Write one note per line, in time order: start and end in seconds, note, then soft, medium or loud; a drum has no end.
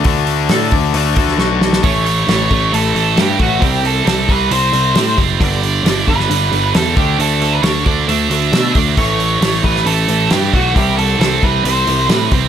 0.00 0.28 D4 medium
0.00 0.72 F#4 medium
0.00 0.50 A4 medium
0.04 0.48 D2 medium
0.04 0.93 D3 medium
0.04 1.17 D3 medium
0.04 0.94 A3 medium
0.04 0.94 D4 medium
0.04 kick loud
0.04 open hi-hat medium
0.27 0.71 D4 medium
0.27 open hi-hat soft
0.49 0.71 A2 medium
0.49 1.16 A4 medium
0.49 snare medium
0.49 open hi-hat medium
0.71 0.94 D2 medium
0.71 1.60 D4 medium
0.71 kick medium
0.71 open hi-hat soft
0.94 1.16 D2 medium
0.94 1.82 D3 medium
0.94 1.83 A3 medium
0.94 1.84 D4 medium
0.94 1.38 F#4 medium
0.94 open hi-hat medium
1.16 1.38 D2 medium
1.16 1.84 A4 medium
1.16 kick medium
1.16 open hi-hat medium
1.28 snare soft
1.38 1.81 B1 medium
1.38 1.84 F#4 medium
1.38 snare medium
1.62 1.84 D4 medium
1.62 snare medium
1.73 snare medium
1.83 2.23 A1 medium
1.83 2.04 A2 medium
1.83 2.28 E3 medium
1.83 2.05 A3 medium
1.83 2.05 C#4 loud
1.83 2.76 C#5 medium
1.83 kick loud
1.83 open hi-hat medium
2.06 2.26 A2 medium
2.06 2.26 A3 medium
2.06 open hi-hat soft
2.27 2.47 A1 medium
2.27 2.48 A2 medium
2.27 2.51 E3 medium
2.27 2.48 A3 medium
2.27 snare medium
2.27 open hi-hat medium
2.50 2.70 A1 medium
2.50 2.70 A2 medium
2.50 2.72 E3 medium
2.50 2.70 A3 medium
2.50 kick medium
2.50 open hi-hat soft
2.72 2.92 A1 medium
2.72 2.93 A2 medium
2.72 3.16 E3 loud
2.72 2.93 A3 medium
2.72 3.19 A4 medium
2.72 open hi-hat medium
2.94 3.15 A1 medium
2.94 3.15 A2 medium
2.94 3.15 A3 medium
2.94 open hi-hat soft
3.16 3.37 G2 medium
3.16 3.37 A2 medium
3.16 3.38 E3 medium
3.16 3.37 A3 medium
3.16 3.40 G4 medium
3.16 snare loud
3.16 open hi-hat medium
3.39 3.59 A1 medium
3.39 3.59 A2 medium
3.39 3.61 E3 medium
3.39 3.59 A3 medium
3.39 3.63 F#4 medium
3.39 kick medium
3.39 open hi-hat soft
3.60 4.01 C2 medium
3.60 3.82 C3 medium
3.60 3.82 G3 medium
3.60 3.83 C4 loud
3.60 3.85 G4 medium
3.60 kick loud
3.60 open hi-hat medium
3.83 4.04 C3 medium
3.83 4.04 G3 medium
3.83 4.07 A4 medium
3.83 open hi-hat soft
4.05 4.26 C2 medium
4.05 4.26 C3 medium
4.05 4.26 G3 medium
4.05 4.29 C4 medium
4.05 4.30 A4 medium
4.05 snare loud
4.05 open hi-hat medium
4.28 4.48 C2 medium
4.28 4.48 C3 medium
4.28 4.49 G3 medium
4.28 4.51 C4 medium
4.28 4.51 B4 medium
4.28 kick medium
4.28 open hi-hat soft
4.51 4.71 C2 medium
4.51 4.71 C3 medium
4.51 4.71 G3 medium
4.51 4.95 C4 loud
4.51 5.15 C5 medium
4.51 open hi-hat medium
4.72 4.93 C2 medium
4.72 4.93 C3 medium
4.72 4.93 G3 medium
4.72 open hi-hat soft
4.94 5.15 A2 medium
4.94 5.15 C3 medium
4.94 5.15 G3 medium
4.94 5.18 C4 medium
4.94 snare loud
4.94 open hi-hat medium
5.18 5.37 F#1 medium
5.18 5.38 C3 medium
5.18 5.38 G3 medium
5.18 5.39 C4 medium
5.18 kick medium
5.18 open hi-hat soft
5.40 5.80 G1 medium
5.40 5.61 G2 medium
5.40 5.62 D3 loud
5.40 5.62 G3 medium
5.40 6.08 D5 medium
5.40 kick loud
5.40 open hi-hat medium
5.63 5.83 G2 medium
5.63 5.83 D3 medium
5.63 open hi-hat medium
5.84 6.04 G1 medium
5.84 6.05 G2 medium
5.84 6.05 D3 medium
5.84 6.07 G3 medium
5.84 snare loud
5.84 open hi-hat medium
6.08 6.27 G1 medium
6.08 6.28 G2 medium
6.08 6.28 D3 medium
6.08 6.29 G3 medium
6.08 6.71 B4 medium
6.08 kick medium
6.08 open hi-hat soft
6.20 snare soft
6.30 6.49 G1 medium
6.30 6.50 G2 medium
6.30 6.50 D3 medium
6.30 6.73 G3 loud
6.30 open hi-hat medium
6.52 6.72 G1 medium
6.52 6.72 G2 medium
6.52 6.72 D3 medium
6.52 open hi-hat soft
6.75 6.94 E2 medium
6.75 6.95 G2 medium
6.75 6.95 D3 medium
6.75 6.95 G3 medium
6.75 6.96 A4 medium
6.75 snare loud
6.75 open hi-hat medium
6.96 7.16 D2 medium
6.96 7.18 D3 medium
6.96 7.18 A3 loud
6.96 7.18 D4 medium
6.96 7.20 G4 medium
6.96 kick loud
6.96 open hi-hat medium
7.19 7.58 D2 medium
7.19 7.39 D3 medium
7.19 7.40 A3 medium
7.19 7.62 D4 loud
7.19 7.54 A4 medium
7.19 open hi-hat medium
7.42 7.62 D3 medium
7.42 7.62 A3 medium
7.42 open hi-hat soft
7.53 7.62 B4 medium
7.63 7.83 D2 medium
7.63 7.84 D3 medium
7.63 7.84 A3 medium
7.63 7.85 D4 medium
7.63 7.84 C#5 medium
7.63 snare medium
7.63 open hi-hat medium
7.86 8.05 D2 medium
7.86 8.06 D3 medium
7.86 8.06 A3 medium
7.86 8.07 D4 medium
7.86 8.07 D5 medium
7.86 kick medium
7.86 open hi-hat soft
8.08 8.28 D2 medium
8.08 8.28 D3 medium
8.08 8.29 A3 medium
8.08 8.52 D4 loud
8.08 8.71 E5 medium
8.08 open hi-hat medium
8.30 8.50 D2 medium
8.30 8.51 D3 medium
8.30 8.51 A3 medium
8.30 open hi-hat medium
8.53 8.72 B2 medium
8.53 8.73 D3 medium
8.53 8.73 A3 medium
8.53 8.74 D4 medium
8.53 snare loud
8.53 open hi-hat medium
8.75 8.95 D2 medium
8.75 8.95 D3 medium
8.75 8.96 A3 medium
8.75 8.96 D4 loud
8.75 kick medium
8.75 open hi-hat medium
8.97 9.36 A1 medium
8.97 9.18 A2 medium
8.97 9.18 E3 medium
8.97 9.19 A3 loud
8.97 9.61 C#5 medium
8.97 kick loud
8.97 open hi-hat medium
9.19 9.40 A2 medium
9.19 9.40 E3 medium
9.19 open hi-hat soft
9.41 9.61 A1 medium
9.41 9.62 A2 medium
9.41 9.62 E3 medium
9.41 9.64 A3 medium
9.41 snare medium
9.41 open hi-hat medium
9.63 9.84 A1 medium
9.63 9.84 A2 medium
9.63 9.84 E3 medium
9.63 9.86 A3 medium
9.63 9.85 B4 medium
9.63 kick medium
9.63 open hi-hat soft
9.76 snare soft
9.85 10.05 A1 medium
9.85 10.06 A2 medium
9.85 10.06 E3 medium
9.85 10.31 A3 medium
9.85 10.31 A4 medium
9.85 open hi-hat medium
10.08 10.28 A1 medium
10.08 10.28 A2 medium
10.08 10.29 E3 medium
10.08 open hi-hat medium
10.30 10.51 G2 medium
10.30 10.51 A2 medium
10.30 10.52 E3 medium
10.30 10.52 A3 medium
10.30 10.54 G4 medium
10.30 snare loud
10.30 open hi-hat medium
10.53 10.73 B1 medium
10.53 10.74 A2 medium
10.53 10.74 E3 medium
10.53 10.74 A3 medium
10.53 10.74 F#4 medium
10.53 kick medium
10.53 open hi-hat soft
10.75 11.15 C2 medium
10.75 10.97 C3 medium
10.75 10.97 E3 medium
10.75 10.98 G3 loud
10.75 11.20 C4 loud
10.75 10.97 G4 medium
10.75 kick loud
10.75 open hi-hat medium
10.97 11.18 C3 medium
10.97 11.18 E3 medium
10.97 11.18 A4 medium
10.97 open hi-hat soft
11.20 11.39 C2 medium
11.20 11.41 C3 medium
11.20 11.41 E3 medium
11.20 11.42 G3 medium
11.20 11.42 C4 medium
11.20 11.43 A4 medium
11.20 snare medium
11.20 open hi-hat medium
11.43 11.62 C2 medium
11.43 11.63 C3 medium
11.43 11.63 E3 medium
11.43 11.64 G3 medium
11.43 11.64 C4 medium
11.43 11.65 B4 medium
11.43 kick medium
11.43 open hi-hat soft
11.65 11.84 C2 medium
11.65 11.85 C3 medium
11.65 11.86 E3 medium
11.65 12.09 G3 loud
11.65 12.10 C4 medium
11.65 12.09 C5 medium
11.65 open hi-hat medium
11.87 12.07 C2 medium
11.87 12.08 C3 medium
11.87 12.08 E3 medium
11.87 open hi-hat soft
12.09 12.29 A2 medium
12.09 12.30 C3 medium
12.09 12.30 E3 medium
12.09 12.32 G3 medium
12.09 12.32 C4 medium
12.09 12.28 B4 medium
12.09 snare loud
12.09 open hi-hat medium
12.32 12.48 C2 medium
12.32 12.48 C3 medium
12.32 12.48 E3 medium
12.32 12.48 G3 medium
12.32 12.48 C4 medium
12.32 kick medium
12.32 open hi-hat medium